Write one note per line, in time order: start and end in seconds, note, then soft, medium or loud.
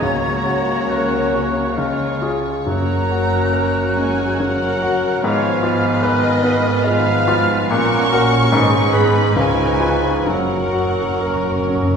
0.00 2.42 C#2 soft
0.00 1.72 C#2 soft
0.00 2.42 C#3 soft
0.00 1.29 C#3 medium
0.00 1.76 F#3 soft
0.00 2.18 A#3 medium
0.00 2.34 C#4 soft
0.00 1.72 F#4 soft
0.00 5.19 C#5 soft
0.00 2.22 C#5 medium
0.00 2.34 C#5 soft
0.00 2.17 A#5 medium
0.00 0.91 G#6 soft
0.47 1.16 F#4 soft
0.90 1.59 A#4 soft
0.90 1.76 F#6 soft
1.34 1.77 C#4 soft
1.76 2.65 C#2 soft
1.76 2.32 G#3 soft
1.76 2.42 F4 soft
1.76 2.32 F6 soft
2.22 2.63 F4 soft
2.22 2.64 G#4 soft
2.66 5.20 F#1 soft
2.66 5.19 F#2 soft
2.66 3.93 F#2 medium
2.66 5.20 F#2 soft
2.66 4.36 F#3 soft
2.66 3.94 A#3 medium
2.66 4.36 C#4 medium
2.66 5.19 F#4 soft
2.66 4.36 A#4 medium
2.66 3.93 A#5 medium
2.66 4.36 F#6 medium
3.11 3.80 F#4 soft
3.53 4.36 F#4 soft
3.53 4.23 A#4 soft
3.96 4.40 G#3 medium
3.96 4.66 C#4 soft
3.96 4.39 G#5 medium
4.39 5.07 C#3 soft
4.39 5.26 F#3 soft
4.39 5.24 F#3 medium
4.39 5.24 C#4 soft
4.39 5.26 A#4 medium
4.39 5.24 A#4 medium
4.39 5.23 F#5 medium
4.39 5.22 F#6 medium
4.82 5.24 F#4 medium
5.22 7.68 G#1 medium
5.22 7.67 G#2 medium
5.22 6.02 F3 medium
5.22 6.85 G#3 medium
5.22 6.83 B3 medium
5.22 7.68 F4 medium
5.22 7.68 B4 medium
5.22 6.83 B4 medium
5.22 5.64 C#5 medium
5.22 6.02 F5 medium
5.22 6.81 F6 medium
5.63 6.27 F4 soft
5.63 7.71 B4 medium
6.03 6.85 D#3 medium
6.03 6.68 B4 medium
6.03 6.84 D#5 medium
6.43 7.10 B3 medium
6.83 7.72 F3 medium
6.83 7.54 G#3 medium
6.83 7.70 G#3 medium
6.83 7.69 B3 medium
6.83 7.73 B4 medium
6.83 7.71 F5 loud
6.83 7.73 F6 medium
7.28 7.71 F4 medium
7.70 8.53 A#1 medium
7.70 8.50 A#2 medium
7.70 8.53 A#2 medium
7.70 8.55 A#3 medium
7.70 8.56 C#4 medium
7.70 8.92 C#4 medium
7.70 8.49 F#4 medium
7.70 8.12 A#4 medium
7.70 8.49 A#4 medium
7.70 8.54 A#4 medium
7.70 8.91 C#6 loud
7.70 8.15 F#6 medium
8.12 8.53 F#4 medium
8.12 8.49 F#4 medium
8.12 8.49 A#4 medium
8.12 8.56 F6 medium
8.52 9.35 G#1 medium
8.52 9.34 G#2 medium
8.52 9.35 G#2 medium
8.52 9.09 G#3 medium
8.52 10.24 D#4 medium
8.52 9.09 D#4 medium
8.52 9.37 G#4 medium
8.52 9.08 B4 medium
8.52 10.24 B4 medium
8.52 9.09 D#6 medium
8.92 9.37 B3 medium
8.92 9.32 G#4 medium
8.92 9.32 B4 medium
8.92 9.37 B5 medium
9.36 10.25 C#2 medium
9.36 10.28 C#2 medium
9.36 10.28 C#3 medium
9.36 10.25 F3 medium
9.36 10.26 G#3 medium
9.36 10.30 D#4 medium
9.36 9.82 A#4 medium
9.36 10.29 B4 medium
9.36 10.27 G#5 medium
9.36 10.24 C#6 medium
9.80 10.23 F4 soft
9.80 10.23 B4 soft
9.80 10.29 B4 medium
10.26 11.97 F#1 medium
10.26 11.97 F#2 soft
10.26 10.35 F#2 soft
10.26 11.97 F#3 medium
10.26 11.97 F#3 soft
10.26 11.97 C#4 soft
10.26 11.97 C#4 medium
10.26 11.97 A#4 medium
10.26 11.97 A#4 soft
10.26 11.97 F#5 medium
10.26 11.97 C#6 soft
10.36 10.43 F#2 soft
10.45 10.50 F#2 soft
10.52 10.59 F#2 soft
10.60 10.66 F#2 soft
10.68 10.75 F#2 soft
10.73 10.83 F#2 soft
10.73 11.49 F#4 soft
10.84 10.92 F#2 soft
10.93 11.01 F#2 soft
11.02 11.09 F#2 soft
11.10 11.17 F#2 soft
11.21 11.96 A#4 soft
11.26 11.33 F#2 soft
11.34 11.42 F#2 soft
11.43 11.50 F#2 soft
11.51 11.58 F#2 soft
11.59 11.65 F#2 soft
11.67 11.74 F#2 soft
11.67 11.97 C#4 soft
11.75 11.82 F#2 medium
11.83 11.91 F#2 medium
11.92 11.97 F#2 medium